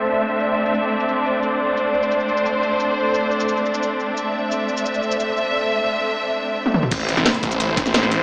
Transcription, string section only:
\new Staff \with { instrumentName = "String section" } { \time 4/4 \key a \minor \tempo 4 = 175 << { e''1 | c''1~ | c''1 | e''1~ |
e''1 | c''1 | } \\ { <a c' d'>1~ | <a c' d'>1~ | <a c' d'>1~ | <a c' d'>1~ |
<a c' d'>1 | <a c' e'>1 | } >> }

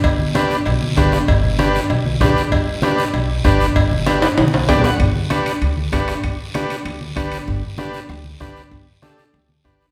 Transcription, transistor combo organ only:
\new Staff \with { instrumentName = "Transistor combo organ" } { \time 4/4 \key g \major \tempo 4 = 194 r4 <d' g' b'>8 r4. <d' g' b'>8 r8 | r4 <d' g' b'>8 r4. <d' g' b'>8 r8 | r4 <d' g' b'>8 r4. <d' g' b'>8 r8 | r4 <d' g' b'>8 r4. <d' g' b' d''>8 fis''8 |
r4 <d' g' b'>8 r4. <d' g' b'>8 r8 | r4 <d' g' b'>8 r4. <d' g' b'>8 r8 | r4 <d' g' b'>8 r4. <d' g' b'>8 r8 | r4 <d' g' a'>8 r4. <d' g' b'>8 r8 | }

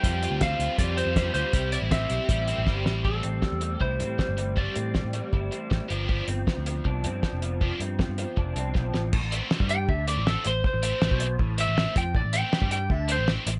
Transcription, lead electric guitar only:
\new Staff \with { instrumentName = "Lead electric guitar" } { \time 4/4 \key a \minor \tempo 4 = 159 g''4 f''4 d''8 c''4 c''8~ | c''8 d''8 e''2 r4 | a'2 c''2 | d''2.~ d''8 r8 |
r1 | r1 | r4. g''8 e''8 d''8 a'8 c''8 | c''2 r8 e''4 g''8 |
d''8 g''4 g''8 e''8 c''8 r4 | }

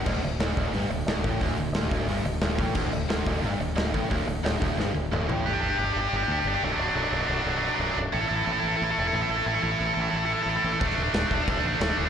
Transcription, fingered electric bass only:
\new Staff \with { instrumentName = "Fingered electric bass" } { \clef bass \time 4/4 \key d \major \tempo 4 = 179 d,,8 d,,8 d,,8 d,,8 g,,8 d,,8 d,,8 a,,8 | d,,8 d,,8 d,,8 d,,8 g,,8 d,,8 d,,8 a,,8 | d,,8 d,,8 d,,8 d,,8 g,,8 d,,8 d,,8 a,,8 | d,,8 d,,8 d,,8 d,,8 g,,8 d,,8 d,,8 a,,8 |
g,,8 g,,8 g,,8 g,,8 g,,8 d,8 g,,8 b,,,8 | b,,,8 b,,,8 b,,,8 b,,,8 b,,,4 b,,,8 b,,,8 | a,,8 a,,8 a,,8 a,,8 a,,8 e,,8 a,,8 a,,8 | a,,8 a,,8 a,,8 a,,8 a,,4 a,,8 a,,8 |
d,,8 d,,8 d,,8 d,,8 d,,8 a,,8 d,,8 d,,8 | }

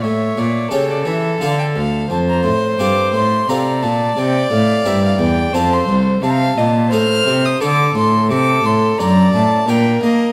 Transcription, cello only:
\new Staff \with { instrumentName = "Cello" } { \clef bass \time 3/4 \key f \major \tempo 4 = 87 a,8 bes,8 cis8 e8 d8 d,8 | f,8 a,8 g,8 a,8 c8 bes,8 | c8 a,8 g,8 e,8 f,8 c,8 | \key d \phrygian c8 bes,8 a,8 c8 d8 a,8 |
c8 a,8 fis,8 a,8 bes,8 bes8 | }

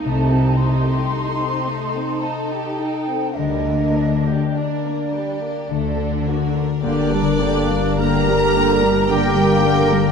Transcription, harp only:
\new Staff \with { instrumentName = "Harp" } { \time 3/4 \key g \minor \tempo 4 = 53 <c ees' ees'' g''>8 a8 g'8 a'8 ees''8 a'8 | d8 d'8 bes'8 d''8 d8 <d' fis'>8 | \tuplet 3/2 { g,8 d8 bes8 d'8 g'8 d'8 d8 bes8 d8 } | }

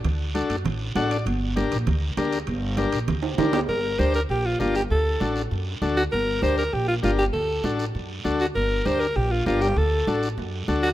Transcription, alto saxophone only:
\new Staff \with { instrumentName = "Alto saxophone" } { \time 4/4 \key g \minor \tempo 4 = 197 r1 | r1 | r2. r8 g'8 | bes'4 c''8 bes'8 g'8 f'8 f'8 g'8 |
a'4. r2 fis'8 | bes'4 c''8 bes'8 g'8 f'8 f'8 g'8 | a'4. r2 fis'8 | bes'4 c''8 bes'8 g'8 f'8 f'8 g'8 |
a'4. r2 fis'8 | }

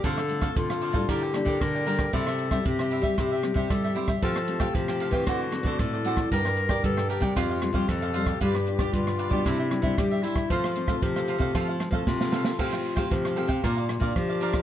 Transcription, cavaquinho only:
\new Staff \with { instrumentName = "Cavaquinho" } { \time 4/4 \key f \major \tempo 4 = 115 <d' a' c'' f''>16 <a' c'' f''>8 <a' c'' f''>8 <a' c'' f''>16 <d' a' c'' f''>16 <a' c'' f''>16 <d' bes' d'' g''>16 <bes' d'' g''>16 r16 <bes' d'' g''>8 <bes' d'' g''>16 <d' bes' d'' g''>16 <bes' d'' g''>16 | <e' g' c'' e''>16 <g' c'' e''>8 <g' c'' e''>8 <g' c'' e''>16 <e' g' c'' e''>16 <g' c'' e''>16 <e' g' c'' e''>16 <g' c'' e''>16 r16 <g' c'' e''>8 <g' c'' e''>16 <e' g' c'' e''>16 <g' c'' e''>16 | <a' c'' f'' g''>16 <c'' f'' g''>8 <c'' f'' g''>8 <c'' f'' g''>16 <a' c'' f'' g''>16 <c'' f'' g''>16 <fis' a' c'' d''>16 <a' c'' d''>16 r16 <a' c'' d''>8 <a' c'' d''>16 <fis' a' c'' d''>16 <a' c'' d''>16 | <d' bes' d'' g''>16 <bes' d'' g''>8 <bes' d'' g''>8 <bes' d'' g''>16 <d' bes' d'' g''>16 <bes' d'' g''>16 <f' g' c'' f''>16 <g' c'' f''>16 r16 <g' c'' f''>8 <g' c'' f''>16 <f' g' c'' f''>16 <g' c'' f''>16 |
<f' g' b' d''>16 <g' b' d''>8 <g' b' d''>8 <g' b' d''>16 <f' g' b' d''>16 <g' b' d''>16 <d' g' c'' e''>16 <g' c'' e''>16 r16 <g' c'' e''>8 <g' c'' e''>16 <d' g' c'' e''>16 <g' c'' e''>16 | <f' a' c'' f''>16 <a' c'' f''>8 <a' c'' f''>8 <a' c'' f''>16 <f' a' c'' f''>16 <a' c'' f''>16 <f' a' c'' f''>16 <a' c'' f''>16 r16 <a' c'' f''>8 <a' c'' f''>16 <f' a' c'' f''>16 <a' c'' f''>16 | <a' c'' f'' g''>16 <c'' f'' g''>8 <c'' f'' g''>8 <c'' f'' g''>16 <a' c'' f'' g''>16 <c'' f'' g''>16 <d' bes' d'' f''>16 <bes' d'' f''>16 r16 <bes' d'' f''>8 <bes' d'' f''>16 <d' bes' d'' f''>16 <bes' d'' f''>16 | }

